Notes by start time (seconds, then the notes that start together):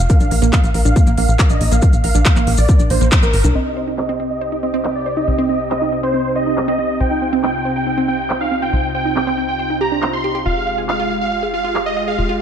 0.10 A#4 F5, kick, closed hi-hat, maracas
0.20 A#1 D4, closed hi-hat, maracas
0.31 A#1 A#3, open hi-hat
0.42 A#1 A#3, closed hi-hat, maracas
0.53 F5, kick, clap, closed hi-hat, maracas
0.64 A#1, closed hi-hat, maracas
0.74 A#1 A#4, open hi-hat
0.85 A#1 D4 F5, closed hi-hat, maracas
0.96 A#3, kick, closed hi-hat, maracas
1.07 A#1 A#3, closed hi-hat, maracas
1.18 A#1 A#3 F5, open hi-hat
1.28 A#1, closed hi-hat, maracas
1.39 A#4, kick, clap, closed hi-hat, maracas
1.50 A#1 D4 D#5, closed hi-hat, maracas
1.61 A#1 A#3, open hi-hat
1.72 A#1 A#3 F5, closed hi-hat, maracas
1.82 A#3, kick, closed hi-hat, maracas
1.93 A#1, closed hi-hat, maracas
2.04 A#1 A#4 F5, open hi-hat
2.15 A#1 D4, closed hi-hat, maracas
2.25 A#3 F5, kick, clap, closed hi-hat, maracas
2.36 A#1 A#3, clap, closed hi-hat, maracas
2.47 A#1 A#3, open hi-hat
2.57 A#1 D5, open hi-hat, maracas
2.69 A#4, kick, closed hi-hat, maracas
2.79 A#1 D4, closed hi-hat, maracas
2.90 A#1 A#3 C5, open hi-hat
3.01 A#1 A#3, closed hi-hat, maracas
3.12 A#3, kick, clap, closed hi-hat, maracas
3.23 A#1 A#4, closed hi-hat, maracas
3.33 G#1 A#4, open hi-hat
3.44 C2 D4, closed hi-hat, maracas
3.55 C2 C3 C4 D#4 G4 D#5
3.77 C5
3.87 D#4
3.98 C4 D#5, clap
4.09 C4
4.20 C4
4.31 D#5
4.41 C5
4.52 D#4
4.63 C4 D#5
4.74 C4
4.85 C4, clap
4.95 D5
5.06 C5
5.17 D#4 D#5
5.28 C2 C4
5.38 C4
5.49 C4 D#5
5.71 C5 D#5, clap
5.82 D#4, clap
5.92 C4
6.03 C4 C5
6.14 C4
6.36 C5 D#5
6.46 D#4
6.57 C4, clap
6.68 C4 D#5
6.79 C4
7.00 C2 F4 C5 G5
7.11 D#4
7.22 C4
7.33 C4
7.43 C4 G5, clap
7.65 C5
7.76 D#4 G5
7.87 C4
7.98 C4
8.08 C4 G5
8.30 C5, clap
8.41 D#4 F5
8.52 C4
8.62 C4 G5
8.73 C2 C4
8.95 C5 G5
9.05 D#4
9.16 C4 G5, clap
9.27 C4, clap
9.38 C4
9.49 G5
9.59 C5
9.70 D#4
9.81 G4 A#5
9.92 D4
10.03 C5, clap
10.13 C5 C6
10.24 G4
10.35 G4
10.46 F1 G#3 F4 G4 F5
10.67 F5
10.78 G#4
10.89 F4 F5, clap
11.00 F4
11.10 F4
11.21 F5
11.32 F5
11.43 G#4
11.54 F4 F5
11.64 F4
11.75 F4, clap
11.86 D#5
11.97 F5
12.08 G#4 F5
12.18 F1 F4
12.29 F4